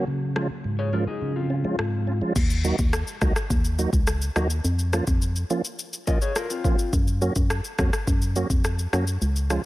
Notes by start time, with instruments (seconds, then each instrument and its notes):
Already playing: ambient pad C#3
0.07 tonewheel organ C#3, ambient pad F3 G#3 F4
0.36 tonewheel organ F3 G#3 C#4 F4, cross-stick
0.64 tonewheel organ G#2
0.79 clean electric guitar G#4 C#5
0.93 tonewheel organ F3 G#3 C#4 F4, clean electric guitar F4 A#4
1.07 clean electric guitar D#4 G#4
1.22 tonewheel organ C#3
1.36 clean electric guitar C4 F4
1.50 tonewheel organ C#4 F4
1.64 tonewheel organ F3 G#3 C#4 F4
1.79 tonewheel organ G#2, cross-stick
2.07 tonewheel organ C#4 F4
2.21 tonewheel organ F3 G#3 C#4 F4
2.36 fm bass D#2, kick, crash, shaker
2.50 shaker
2.64 tonewheel organ F#3 A#3 D#4 F#4, shaker
2.78 fm bass D#2, kick, shaker
2.93 cross-stick, shaker
3.07 shaker
3.21 fm bass C#2, tonewheel organ F#3 A#3 D#4 F#4, kick, cross-stick, shaker
3.36 cross-stick, shaker
3.50 fm bass D#2, kick, shaker
3.65 shaker
3.79 tonewheel organ F#3 A#3 D#4 F#4, shaker
3.93 fm bass C#2, kick, shaker
4.07 cross-stick, shaker
4.22 shaker
4.36 fm bass D#2, tonewheel organ F#3 A#3 D#4 F#4, cross-stick, shaker
4.50 shaker
4.64 fm bass F2, shaker
4.79 shaker
4.93 tonewheel organ F3 A#3 C#4 F4, cross-stick, shaker
5.07 fm bass F2, kick, shaker
5.22 shaker
5.36 shaker
5.50 tonewheel organ F3 A#3 C#4 F4, shaker
5.65 shaker
5.79 shaker
5.93 shaker
6.07 tonewheel organ F3 A#3 C#4 F4, clean electric guitar A#4 D#5, kick, shaker
6.22 clean electric guitar G#4 C#5, shaker
6.36 clean electric guitar F4 A#4, cross-stick, shaker
6.50 clean electric guitar C4 F4, shaker
6.64 tonewheel organ F3 A#3 C#4 F4, kick, shaker
6.79 shaker
6.93 fm bass F#2, kick, shaker
7.07 shaker
7.22 tonewheel organ F#3 A#3 C#4 F#4, shaker
7.36 fm bass F#2, kick, shaker
7.50 cross-stick, shaker
7.64 shaker
7.79 fm bass F2, tonewheel organ F#3 A#3 C#4 F#4, kick, cross-stick, shaker
7.93 cross-stick, shaker
8.07 fm bass F#2, kick, shaker
8.22 shaker
8.36 tonewheel organ F#3 A#3 C#4 F#4, shaker
8.50 fm bass F2, kick, shaker
8.64 cross-stick, shaker
8.79 shaker
8.93 fm bass F#2, tonewheel organ F#3 A#3 C#4 F#4, cross-stick, shaker
9.07 shaker
9.22 fm bass C#2, shaker
9.36 shaker
9.50 tonewheel organ F3 G#3 C#4 F4, cross-stick, shaker